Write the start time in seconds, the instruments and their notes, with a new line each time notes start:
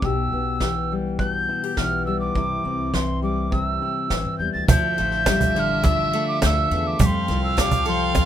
0.02 upright bass B1, steel-string acoustic guitar B2 G4, tin whistle E6, kick
0.32 upright bass B1, steel-string acoustic guitar B3
0.60 steel-string acoustic guitar E3 G4, kick, snare
0.92 steel-string acoustic guitar G3
1.19 steel-string acoustic guitar B2 B3, tin whistle G6, kick
1.49 steel-string acoustic guitar E4
1.64 steel-string acoustic guitar G4
1.77 upright bass B1, steel-string acoustic guitar E3 B3, tin whistle F6, kick, snare
2.06 steel-string acoustic guitar G3, tin whistle E6
2.20 tin whistle D6
2.35 upright bass C2, steel-string acoustic guitar C3 E4, kick
2.64 upright bass C2, steel-string acoustic guitar C4
2.94 steel-string acoustic guitar E3 E4, tin whistle C6, kick, snare
3.22 steel-string acoustic guitar G3, tin whistle D6
3.51 steel-string acoustic guitar C3 C4, tin whistle E6, kick
3.82 steel-string acoustic guitar E4
4.10 upright bass A1, steel-string acoustic guitar E3 C4, kick, snare
4.25 upright bass G2
4.38 upright bass E2, steel-string acoustic guitar G3, tin whistle G6
4.53 upright bass D2, tin whistle A6
4.67 steel-string acoustic guitar D2 F3, upright bass D2, string section D4 E5, fiddle E5, tin whistle G6, kick, cajon bass, snare
4.98 upright bass A1, steel-string acoustic guitar A3 F4, cajon slap, snare
5.11 snare
5.26 steel-string acoustic guitar G3, kick, cajon slap, snare
5.41 cajon bass
5.55 steel-string acoustic guitar D3 A4, tin whistle G6, snare
5.60 tin whistle F6
5.84 tin whistle E6, cajon bass, kick, cajon slap, snare
5.88 steel-string acoustic guitar F4
6.13 steel-string acoustic guitar A3 A4, snare
6.28 tin whistle D6
6.42 upright bass D2, steel-string acoustic guitar D2 A4, tin whistle E6 G6, kick, cajon slap, snare
6.71 upright bass E2, steel-string acoustic guitar E2 A3, snare
6.87 tin whistle D6
6.99 upright bass F2, steel-string acoustic guitar F2 G3, string section A4 G5, fiddle F5, tin whistle D6, cajon bass, kick, snare
7.06 tin whistle C6
7.28 upright bass C2, steel-string acoustic guitar C4 F4, cajon slap, snare
7.44 tin whistle E6
7.57 steel-string acoustic guitar G3 F4, tin whistle D6, kick, snare, cajon slap
7.71 cajon bass
7.86 steel-string acoustic guitar F3 A4, tin whistle C6, snare
8.15 steel-string acoustic guitar F4, cajon bass, kick, cajon slap, snare